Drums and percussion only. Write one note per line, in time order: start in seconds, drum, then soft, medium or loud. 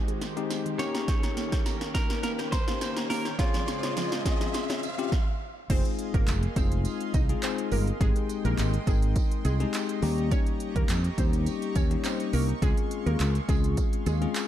0.08 closed hi-hat medium
0.21 snare medium
0.21 closed hi-hat medium
0.21 tambourine medium
0.37 closed hi-hat medium
0.50 snare loud
0.50 closed hi-hat medium
0.50 tambourine medium
0.66 closed hi-hat medium
0.79 snare loud
0.79 closed hi-hat medium
0.79 tambourine medium
0.95 snare loud
0.95 closed hi-hat soft
1.08 kick loud
1.08 snare loud
1.08 closed hi-hat medium
1.08 tambourine soft
1.23 snare loud
1.23 closed hi-hat medium
1.37 snare loud
1.37 closed hi-hat medium
1.37 tambourine soft
1.52 kick loud
1.52 snare loud
1.52 closed hi-hat medium
1.66 snare loud
1.66 closed hi-hat medium
1.66 tambourine medium
1.81 snare loud
1.81 closed hi-hat soft
1.95 kick medium
1.95 snare loud
1.95 closed hi-hat medium
1.95 tambourine medium
2.10 snare loud
2.10 closed hi-hat medium
2.23 snare loud
2.23 closed hi-hat medium
2.23 tambourine medium
2.39 snare loud
2.39 closed hi-hat medium
2.52 kick medium
2.52 snare loud
2.52 closed hi-hat medium
2.52 tambourine medium
2.68 snare loud
2.68 closed hi-hat medium
2.81 snare loud
2.81 closed hi-hat medium
2.81 tambourine medium
2.97 snare loud
2.97 closed hi-hat medium
3.10 snare loud
3.10 open hi-hat medium
3.10 tambourine medium
3.25 snare loud
3.25 closed hi-hat soft
3.39 kick loud
3.39 snare loud
3.39 closed hi-hat medium
3.54 snare loud
3.54 closed hi-hat medium
3.68 snare loud
3.68 closed hi-hat medium
3.68 tambourine soft
3.83 snare loud
3.83 closed hi-hat medium
3.97 snare loud
3.97 closed hi-hat medium
3.97 tambourine medium
4.12 snare loud
4.12 closed hi-hat soft
4.26 kick loud
4.26 snare loud
4.26 closed hi-hat medium
4.26 tambourine medium
4.41 snare loud
4.41 closed hi-hat medium
4.54 snare loud
4.54 closed hi-hat medium
4.54 tambourine medium
4.70 snare loud
4.70 closed hi-hat medium
4.83 closed hi-hat medium
4.83 tambourine medium
4.99 closed hi-hat medium
5.12 kick loud
5.12 snare medium
5.70 kick loud
5.70 closed hi-hat medium
5.70 crash loud
5.85 closed hi-hat medium
5.99 closed hi-hat medium
6.14 kick loud
6.14 closed hi-hat medium
6.27 clap loud
6.27 closed hi-hat medium
6.27 tambourine medium
6.43 closed hi-hat soft
6.56 kick loud
6.56 closed hi-hat medium
6.56 tambourine medium
6.72 closed hi-hat medium
6.85 closed hi-hat medium
6.85 tambourine medium
7.01 closed hi-hat medium
7.14 kick medium
7.14 closed hi-hat medium
7.14 tambourine medium
7.29 closed hi-hat medium
7.43 clap loud
7.43 closed hi-hat medium
7.43 tambourine medium
7.58 closed hi-hat medium
7.72 open hi-hat medium
7.72 tambourine medium
7.87 closed hi-hat soft
8.01 kick loud
8.01 closed hi-hat medium
8.01 tambourine soft
8.16 closed hi-hat medium
8.29 closed hi-hat medium
8.29 tambourine soft
8.45 closed hi-hat medium
8.58 clap loud
8.58 closed hi-hat medium
8.58 tambourine medium
8.74 closed hi-hat soft
8.87 kick loud
8.87 closed hi-hat medium
8.87 tambourine medium
9.02 closed hi-hat medium
9.16 kick medium
9.16 closed hi-hat medium
9.16 tambourine medium
9.31 closed hi-hat medium
9.45 closed hi-hat medium
9.45 tambourine medium
9.60 closed hi-hat medium
9.74 clap loud
9.74 closed hi-hat medium
9.74 tambourine medium
9.89 closed hi-hat medium
10.02 open hi-hat medium
10.02 tambourine medium
10.18 closed hi-hat soft
10.31 kick loud
10.31 closed hi-hat medium
10.31 tambourine soft
10.47 closed hi-hat medium
10.60 closed hi-hat medium
10.76 kick medium
10.76 closed hi-hat medium
10.89 clap loud
10.89 closed hi-hat medium
10.89 tambourine medium
11.04 closed hi-hat medium
11.18 kick loud
11.18 closed hi-hat medium
11.18 tambourine medium
11.33 closed hi-hat medium
11.46 closed hi-hat medium
11.46 tambourine medium
11.62 closed hi-hat medium
11.75 kick loud
11.75 closed hi-hat medium
11.75 tambourine medium
11.91 closed hi-hat medium
12.04 clap loud
12.04 closed hi-hat medium
12.04 tambourine medium
12.20 closed hi-hat medium
12.33 open hi-hat medium
12.33 tambourine medium
12.49 closed hi-hat soft
12.62 kick loud
12.62 closed hi-hat medium
12.62 tambourine soft
12.77 closed hi-hat medium
12.91 closed hi-hat medium
13.07 closed hi-hat medium
13.20 clap loud
13.20 closed hi-hat medium
13.20 tambourine medium
13.35 closed hi-hat soft
13.49 kick loud
13.49 closed hi-hat medium
13.49 tambourine medium
13.64 closed hi-hat medium
13.77 kick medium
13.77 closed hi-hat medium
13.77 tambourine medium
13.93 closed hi-hat medium
14.06 closed hi-hat medium
14.06 tambourine medium
14.22 closed hi-hat medium
14.35 clap loud
14.35 closed hi-hat medium
14.35 tambourine medium